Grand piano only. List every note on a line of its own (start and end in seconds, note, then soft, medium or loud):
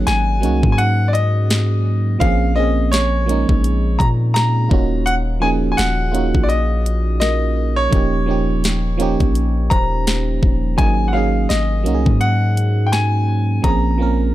0.07 0.71 G#5 loud
0.72 0.78 G#5 medium
0.78 1.06 F#5 loud
1.08 1.14 D5 medium
1.13 2.24 D#5 loud
2.20 2.54 F5 loud
2.56 2.93 D#5 medium
2.92 4.03 C#5 loud
3.99 4.07 A#5 loud
4.34 5.08 A#5 loud
5.06 5.14 F#5 loud
5.42 5.49 G#5 loud
5.72 5.78 G#5 medium
5.77 6.45 F#5 loud
6.43 6.50 D5 medium
6.49 7.19 D#5 medium
7.20 7.79 D#5 medium
7.76 9.76 C#5 loud
9.70 10.81 A#5 loud
10.78 11.06 G#5 medium
11.08 11.14 F#5 medium
11.13 11.50 F5 medium
11.49 12.23 D#5 loud
12.21 12.88 F#5 medium
12.87 12.93 G5 medium
12.92 13.66 G#5 loud
13.64 14.35 A#5 medium